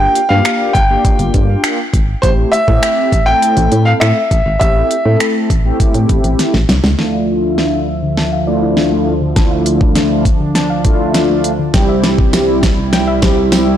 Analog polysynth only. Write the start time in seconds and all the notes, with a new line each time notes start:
Already playing: A#3 D4 F4 G4
0.30 A#3 D4 F4 G4
0.90 A#3 D4 F4 G4
2.23 A3 C4 E4 G4
2.68 A3 C4 E4 G4
3.27 A3 C4 E4 A4
4.61 A3 C4 E4 G4
5.05 A3 C4 E4 A4
5.65 A3 C4 E4 G4
6.98 A3 D4 E4 F4
8.47 A3 D4 E4 F4
9.36 A3 D4 E4 F4
10.85 A3 D4 E4 F4
11.74 G3 C4 E4 G4
13.22 G3 C4 E4 G4